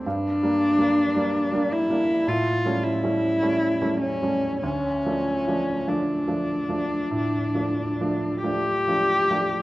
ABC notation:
X:1
M:4/4
L:1/8
Q:1/4=49
K:Aphr
V:1 name="Cello"
D3 E F E2 ^C | ^C2 D4 G2 |]
V:2 name="Grand piano"
(3G,, [G,B,D] [G,B,D] (3[G,B,D] [G,B,D] [G,B,D] (3A,, [G,A,^C] [G,A,C] (3[G,A,C] [G,A,C] [G,A,C] | (3D,, [F,A,D] [F,A,D] (3[F,A,D] [F,A,D] [F,A,D] (3A,, [F,A,D] [F,A,D] (3[F,A,D] [F,A,D] [F,A,D] |]